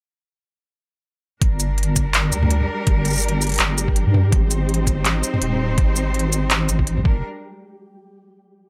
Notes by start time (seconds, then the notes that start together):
1.41 G1 G3 D4 G4 A#4, kick, closed hi-hat
1.60 closed hi-hat, shaker
1.78 closed hi-hat
1.83 closed hi-hat
1.96 kick, closed hi-hat, shaker
2.14 clap, closed hi-hat
2.32 D2, closed hi-hat, shaker
2.43 mid tom
2.51 closed hi-hat
2.61 mid tom
2.87 G1, kick, closed hi-hat
3.05 closed hi-hat, shaker
3.08 shaker
3.10 shaker
3.13 shaker
3.16 shaker
3.17 shaker
3.20 shaker
3.21 closed hi-hat, shaker
3.28 closed hi-hat
3.42 closed hi-hat, shaker
3.44 closed hi-hat
3.47 closed hi-hat
3.49 closed hi-hat
3.52 closed hi-hat
3.54 closed hi-hat
3.56 closed hi-hat
3.58 clap, closed hi-hat
3.60 G1, closed hi-hat
3.78 closed hi-hat, shaker
3.88 kick
3.96 closed hi-hat
4.07 G2
4.14 mid tom
4.32 G#1 C4 D#4 C5, kick, closed hi-hat
4.51 closed hi-hat, shaker
4.69 closed hi-hat
4.74 closed hi-hat
4.87 kick, closed hi-hat, shaker
5.05 clap, closed hi-hat
5.23 closed hi-hat, shaker
5.34 mid tom
5.42 D#1, closed hi-hat
5.52 mid tom
5.78 G#1, kick, closed hi-hat
5.96 shaker
6.14 closed hi-hat
6.19 closed hi-hat
6.33 closed hi-hat, shaker
6.51 clap, closed hi-hat
6.69 G#1, closed hi-hat, shaker
6.79 kick
6.87 closed hi-hat
6.97 G#1, mid tom
7.05 G1 G3 D4 A#4, kick